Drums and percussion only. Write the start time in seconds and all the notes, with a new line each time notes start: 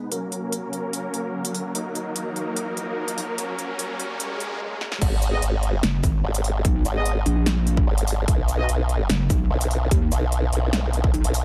0.12 closed hi-hat
0.32 closed hi-hat
0.52 closed hi-hat
0.73 closed hi-hat
0.93 closed hi-hat
1.14 closed hi-hat
1.45 closed hi-hat
1.55 open hi-hat
1.75 closed hi-hat
1.95 closed hi-hat
2.16 closed hi-hat
2.36 closed hi-hat
2.56 closed hi-hat
2.77 closed hi-hat
3.08 closed hi-hat
3.18 open hi-hat
3.38 closed hi-hat
3.59 closed hi-hat
3.79 closed hi-hat
4.00 closed hi-hat
4.20 closed hi-hat
4.40 closed hi-hat
4.81 snare
4.92 snare
5.02 kick, closed hi-hat, crash
5.22 closed hi-hat, shaker
5.42 closed hi-hat
5.63 closed hi-hat
5.83 snare, closed hi-hat
6.04 kick, closed hi-hat, shaker
6.35 closed hi-hat, shaker
6.44 open hi-hat
6.65 kick, closed hi-hat
6.85 closed hi-hat, shaker
7.06 closed hi-hat
7.26 closed hi-hat
7.46 snare, closed hi-hat
7.67 closed hi-hat
7.77 kick
7.98 closed hi-hat
8.08 open hi-hat, shaker
8.28 kick, closed hi-hat
8.48 closed hi-hat, shaker
8.69 closed hi-hat
8.89 closed hi-hat
9.10 snare, closed hi-hat
9.30 kick, closed hi-hat, shaker
9.61 closed hi-hat, shaker
9.71 open hi-hat
9.91 kick, closed hi-hat
10.12 closed hi-hat, shaker
10.32 closed hi-hat
10.53 closed hi-hat
10.73 snare, closed hi-hat
10.93 closed hi-hat
11.04 kick
11.14 closed hi-hat
11.24 closed hi-hat
11.34 open hi-hat, shaker